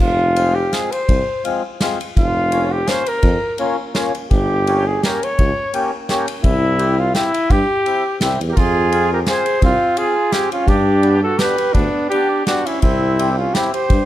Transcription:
0.00 tuba F1, flugelhorn F4
0.36 accordion G#3 C4 F4, ride
0.55 flugelhorn G4
0.72 accordion G#3 C4 F4, flugelhorn G#4, snare, ride
0.91 flugelhorn C5, ride
1.09 tuba C2, kick, ride
1.45 accordion G#3 C4 F4, ride
1.81 accordion G#3 C4 F4, snare, ride
2.01 ride
2.17 tuba F1, flugelhorn F4, kick, ride
2.52 accordion A#3 C#4 F4, ride
2.72 flugelhorn G4
2.87 accordion A#3 C#4 F4, flugelhorn C5, snare, ride
3.06 flugelhorn A#4, ride
3.23 tuba F2, kick, ride
3.58 accordion A#3 C#4 F4, ride
3.95 accordion A#3 C#4 F4, snare, ride
4.15 ride
4.31 tuba G1, flugelhorn G4, kick, ride
4.67 accordion A#3 C#4 G4, ride
4.87 flugelhorn G#4
5.03 accordion A#3 C#4 G4, flugelhorn A#4, snare, ride
5.23 flugelhorn C#5, ride
5.39 tuba C#2, kick, ride
5.74 accordion A#3 C#4 G4, ride
6.09 accordion A#3 C#4 G4, snare, ride
6.28 ride
6.44 tuba C2, flugelhorn E4, kick, ride
6.79 accordion C4 E4 G4, ride
6.99 flugelhorn F4
7.14 accordion C4 E4 G4, flugelhorn E4, snare, ride
7.34 ride
7.50 tuba G2, flugelhorn G4, kick, ride
7.86 accordion C4 E4 G4, ride
8.21 tuba C2, accordion C4 E4 G4, snare, ride
8.40 tuba E2, ride
8.49 trumpet G4, flugelhorn A#4
8.56 tuba F2, trumpet F4, flugelhorn G#4, kick, ride
8.92 accordion C4 F4 G#4, ride
9.13 trumpet G4, flugelhorn A#4
9.26 accordion C4 F4 G#4, trumpet G#4, flugelhorn C5, snare, ride
9.46 ride
9.62 tuba C2, trumpet C4, flugelhorn F4, kick, ride
9.97 accordion C4 F4 G#4, trumpet F4, flugelhorn G#4, ride
10.32 accordion C4 F4 G#4, trumpet C4, flugelhorn G4, snare, ride
10.52 trumpet C#4, flugelhorn F4, ride
10.67 tuba G2, trumpet D4, flugelhorn G4, kick, ride
11.03 accordion B3 D4 G4, ride
11.23 trumpet F#4, flugelhorn A4
11.38 accordion B3 D4 G4, trumpet G4, flugelhorn B4, snare, ride
11.58 ride
11.73 tuba D2, trumpet B3, flugelhorn D4, kick, ride
12.10 accordion B3 D4 G4, trumpet D4, flugelhorn G4, ride
12.46 accordion B3 D4 G4, trumpet D4, flugelhorn F#4, snare, ride
12.65 trumpet C#4, flugelhorn E4, ride
12.81 tuba C2, trumpet C4, flugelhorn E4, kick, ride
13.19 accordion C4 E4 G4, ride
13.32 trumpet E4, flugelhorn G4
13.37 trumpet C#4, flugelhorn F4
13.54 accordion C4 E4 G4, trumpet E4, flugelhorn G4, snare, ride
13.72 trumpet G4, flugelhorn C5, ride
13.90 tuba G2, kick, ride

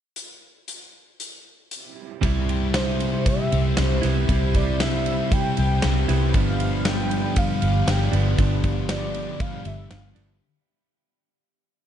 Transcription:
0.16 closed hi-hat
0.68 closed hi-hat
1.20 closed hi-hat
1.71 closed hi-hat
2.21 fingered electric bass C2, clean electric guitar C3 G3 E4, distorted electric guitar C3 G3 C4, twelve-string acoustic guitar G3, ambient pad G4 C5 E5 B5, kick, ride
2.49 twelve-string acoustic guitar G4, ride
2.74 twelve-string acoustic guitar E4, soft synth lead C5, snare, ride
3.00 ride
3.26 twelve-string acoustic guitar G4, soft synth lead E5, kick, ride
3.51 fingered electric bass C2, distorted electric guitar C3 G3 C4, ride
3.77 fingered electric bass C2, distorted electric guitar C3 G3 C4, twelve-string acoustic guitar G3, soft synth lead C5, snare, ride
4.02 fingered electric bass C2, clean electric guitar G3 B3 E4, twelve-string acoustic guitar E4, snare, ride
4.06 clean electric guitar C3
4.28 fingered electric bass C2, clean electric guitar C3 G3 E4, distorted electric guitar C3 G3 C4, twelve-string acoustic guitar G3, kick, ride
4.54 twelve-string acoustic guitar G4, soft synth lead D5, kick, ride
4.80 twelve-string acoustic guitar E4, soft synth lead E5, snare, ride
5.06 ride
5.31 twelve-string acoustic guitar G4, soft synth lead G5, kick, ride
5.57 fingered electric bass C2, distorted electric guitar C3 G3 C4, soft synth lead G5, ride
5.82 fingered electric bass C2, distorted electric guitar C3 G3 C4, snare, ride
6.08 fingered electric bass C2, clean electric guitar C3 G3 B3 E4, twelve-string acoustic guitar E4, snare, ride
6.33 fingered electric bass G1, distorted electric guitar G2 D3 G3, clean electric guitar G2 D3 F3 B3 D4, twelve-string acoustic guitar F3, ambient pad D5 F5, kick, ride
6.37 soft synth lead F5
6.60 twelve-string acoustic guitar G4, ride
6.85 twelve-string acoustic guitar D4, soft synth lead G5, snare, ride
7.11 twelve-string acoustic guitar B3, ride
7.36 twelve-string acoustic guitar G4, soft synth lead F5, kick, ride
7.62 fingered electric bass G1, distorted electric guitar G2 D3 G3, twelve-string acoustic guitar B3, ride
7.87 fingered electric bass G1, distorted electric guitar G2 D3 G3, twelve-string acoustic guitar F3, soft synth lead G5, snare, ride
8.12 fingered electric bass G1, clean electric guitar D3 F3 B3 D4, twelve-string acoustic guitar D4, ride
8.16 clean electric guitar G2
8.37 fingered electric bass G1, clean electric guitar G2 D3 F3 B3 D4, distorted electric guitar G2 D3 G3, twelve-string acoustic guitar F3, ambient pad G5, kick, ride
8.64 twelve-string acoustic guitar G4, kick, ride
8.89 twelve-string acoustic guitar D4, soft synth lead D5, snare, ride
9.14 twelve-string acoustic guitar B3, ride
9.40 twelve-string acoustic guitar G4, soft synth lead F5, kick, ride
9.65 fingered electric bass G1, distorted electric guitar G2 D3 G3, twelve-string acoustic guitar B3, soft synth lead E5, ride
9.91 fingered electric bass G1, distorted electric guitar G2 D3 G3, twelve-string acoustic guitar F3, soft synth lead F5, snare, ride
10.15 fingered electric bass G1, clean electric guitar D3 F3 B3 D4, twelve-string acoustic guitar D4, snare, ride
10.19 clean electric guitar G2

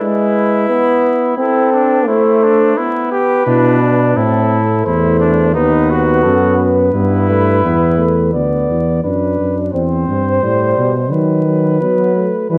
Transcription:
0.00 trombone G#3, trumpet E4, cornet B4
0.69 trombone B3
1.36 trombone C4, trumpet E4, cornet A4
1.73 trumpet D4
2.06 trombone A3, trumpet E4, cornet C5
2.43 trumpet D4
2.76 trombone B3, trumpet E4, cornet B4
3.12 trumpet G4
3.46 bass trombone B2, trumpet D4, trombone E4
3.81 trombone D4
4.16 bass trombone A2, trombone C4, trumpet E4, cornet A4
4.84 bass trombone E2, trombone A3, trumpet E4, cornet C5
5.20 trumpet D4
5.54 bass trombone D#2, trombone B3, trumpet D#4, cornet B4
5.90 trumpet F#4
6.23 bass trombone F#2, cornet A4
6.58 cornet B4
6.93 bass trombone G2, trombone B3, trumpet E4
7.29 trombone A3
7.63 bass trombone E2, trombone B3
7.98 trombone A3
8.33 bass trombone D2, trombone B3, cornet D5
8.70 bass trombone E2
9.04 bass trombone F#2, trombone D4, cornet B4
9.39 bass trombone F#2
9.73 bass trombone E2, trombone C4, cornet C5
10.08 bass trombone G2
10.43 bass trombone A2, trombone G3
10.77 bass trombone B2
11.10 bass trombone D#3, trombone F#3, cornet B4
11.46 trombone F#3
11.81 bass trombone F#3, trombone B3
12.16 trombone A3
12.50 bass trombone E3, trombone G3, cornet B4

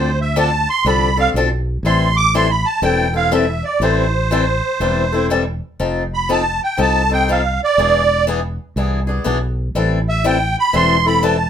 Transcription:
Already playing: fingered electric bass D2, accordion C5
0.21 accordion E5
0.36 steel-string acoustic guitar D3 F3 C4 D4 A4, accordion A5
0.70 accordion C6
0.85 fingered electric bass C2, steel-string acoustic guitar D3 F3 C4 D4 A4, accordion B5
1.17 steel-string acoustic guitar C4 D4 A4, accordion F5
1.34 fingered electric bass B1, steel-string acoustic guitar D3 F3 C4 D4 A4
1.83 fingered electric bass A1, steel-string acoustic guitar E3 G3 C4 E4 A4, accordion C6
2.17 accordion D6
2.34 steel-string acoustic guitar E3 G3 C4 E4 A4, accordion C6
2.51 accordion B5
2.66 accordion A5
2.82 fingered electric bass E1, steel-string acoustic guitar E3 G3 C4 E4 A4, accordion G5
3.14 steel-string acoustic guitar C4 E4 A4, accordion F5
3.32 steel-string acoustic guitar E3 G3 C4 E4 A4, accordion E5
3.64 accordion D5
3.80 fingered electric bass A1, steel-string acoustic guitar E3 G3 C4 E4 A4, accordion C5
4.31 steel-string acoustic guitar E3 G3 C4 E4 A4
4.80 fingered electric bass E1, steel-string acoustic guitar E3 G3 C4 E4 A4
5.12 steel-string acoustic guitar C4 E4 A4
5.30 steel-string acoustic guitar E3 G3 C4 E4 A4
5.80 fingered electric bass F1, steel-string acoustic guitar F3 C4 D#4 A4
6.14 accordion B5
6.29 steel-string acoustic guitar F3 C4 D#4 A4, accordion A5
6.64 accordion G5
6.77 fingered electric bass C2, steel-string acoustic guitar F3 C4 D#4 A4
6.81 accordion A5
7.09 steel-string acoustic guitar C4 D#4 A4, accordion G5
7.28 steel-string acoustic guitar F3 C4 D#4 A4, accordion F5
7.64 accordion D5
7.78 fingered electric bass E1, steel-string acoustic guitar E3 B3 D4 G#4
8.27 steel-string acoustic guitar E3 B3 D4 G#4
8.76 fingered electric bass C2, steel-string acoustic guitar E3 B3 D4 G#4
9.07 steel-string acoustic guitar B3 D4 G#4
9.24 fingered electric bass B1, steel-string acoustic guitar E3 B3 D4 G#4
9.75 fingered electric bass A1, steel-string acoustic guitar E3 G3 C4 E4 A4
10.09 accordion E5
10.24 steel-string acoustic guitar E3 G3 C4 E4 A4, accordion G5
10.59 accordion B5
10.73 fingered electric bass E1, steel-string acoustic guitar E3 G3 C4 E4 A4, accordion C6
11.06 steel-string acoustic guitar C4 E4 A4, accordion B5
11.23 steel-string acoustic guitar E3 G3 C4 E4 A4, accordion A5

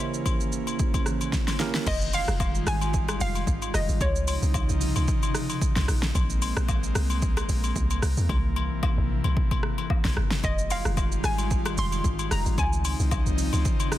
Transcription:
Already playing: analog synth pad C#3 E3 A#3 C#4, tine electric piano A#3 C#4 E4 G4 C5, synth pluck E5
0.14 shaker
0.26 kick, high agogo, shaker
0.40 shaker
0.52 shaker
0.67 high agogo, shaker
0.79 kick, shaker
0.94 kick, high agogo, shaker
1.06 cross-stick, shaker
1.21 high agogo, shaker
1.33 kick, snare, shaker
1.48 snare, high agogo, shaker
1.60 tine electric piano A#3 C#4 E4 G4 A#4, snare, shaker
1.74 snare, shaker
1.87 log drum bass F1, analog synth pad D#3 G3 G#3 F4, synth pluck D#5, kick, crash, high agogo, shaker
2.01 shaker
2.13 synth pluck F5, open hi-hat, high agogo, shaker
2.28 log drum bass F1, cross-stick, shaker
2.40 kick, high agogo, low woodblock, shaker
2.55 shaker
2.67 log drum bass G#1, synth pluck G#5, cross-stick, open hi-hat, shaker
2.81 high agogo, shaker
2.94 kick, shaker
3.09 cross-stick, high agogo, shaker
3.20 log drum bass F1, synth pluck F5, open hi-hat, shaker
3.35 high agogo, shaker
3.47 log drum bass G#1, kick, shaker
3.62 high agogo, shaker
3.74 log drum bass F1, synth pluck D#5, cross-stick, open hi-hat, shaker
3.89 log drum bass G#1, shaker
4.01 log drum bass C#2, analog synth pad C3 C#3 F3 D#4, synth pluck C#5, kick, high agogo, shaker
4.16 shaker
4.28 open hi-hat, high agogo, shaker
4.42 log drum bass C2, shaker
4.54 kick, high agogo, low woodblock, shaker
4.69 log drum bass C2, shaker
4.81 open hi-hat, shaker
4.96 log drum bass C#2, high agogo, shaker
5.08 kick, shaker
5.23 high agogo, shaker
5.35 cross-stick, open hi-hat, shaker
5.50 high agogo, shaker
5.62 kick, shaker
5.76 log drum bass C2, snare, high agogo, shaker
5.88 log drum bass A#1, analog synth pad G#3 A#3 C4, cross-stick, open hi-hat, shaker
6.03 snare, shaker
6.15 log drum bass A#1, kick, high agogo, shaker
6.30 shaker
6.42 open hi-hat, high agogo, shaker
6.57 log drum bass A#1, cross-stick, shaker
6.68 kick, high agogo, low woodblock, shaker
6.83 shaker
6.95 log drum bass C2, cross-stick, open hi-hat, shaker
7.10 high agogo, shaker
7.22 kick, shaker
7.37 cross-stick, high agogo, shaker
7.49 log drum bass A#1, open hi-hat, shaker
7.64 high agogo, shaker
7.76 log drum bass C2, kick, shaker
7.90 high agogo, shaker
8.02 log drum bass C2, analog synth pad C3 E3, cross-stick, open hi-hat, shaker
8.17 log drum bass E2, shaker
8.29 log drum bass C2, kick, high agogo
8.56 high agogo
8.71 log drum bass A#1
8.83 kick, high agogo, low woodblock
8.98 log drum bass A#1
9.24 log drum bass C2, high agogo
9.37 kick
9.51 kick, high agogo
9.63 cross-stick
9.78 high agogo
9.90 kick, low woodblock
10.05 log drum bass A#1, snare, high agogo
10.17 log drum bass G1, cross-stick
10.31 snare
10.44 log drum bass F1, analog synth pad D#3 G3 G#3 F4, synth pluck D#5, kick, high agogo, shaker
10.58 shaker
10.70 synth pluck F5, open hi-hat, high agogo, shaker
10.85 log drum bass F1, cross-stick, shaker
10.97 kick, high agogo, low woodblock, shaker
11.12 shaker
11.24 log drum bass G#1, synth pluck G#5, cross-stick, open hi-hat, shaker
11.38 high agogo, shaker
11.51 kick, shaker
11.66 cross-stick, high agogo, shaker
11.78 log drum bass F1, synth pluck C6, open hi-hat, shaker
11.92 high agogo, shaker
12.04 log drum bass G#1, kick, shaker
12.19 high agogo, shaker
12.31 log drum bass F1, synth pluck A#5, cross-stick, open hi-hat, shaker
12.46 log drum bass G#1, shaker
12.58 log drum bass C#2, analog synth pad C#3 F3 C4 D#4, synth pluck G#5, kick, high agogo, shaker
12.73 shaker
12.85 open hi-hat, high agogo, shaker
13.00 log drum bass C2, shaker
13.11 kick, high agogo, low woodblock, shaker
13.26 log drum bass C2, shaker
13.38 open hi-hat, shaker
13.53 log drum bass C#2, high agogo, shaker
13.65 kick, shaker
13.80 high agogo, shaker
13.92 cross-stick, open hi-hat, shaker

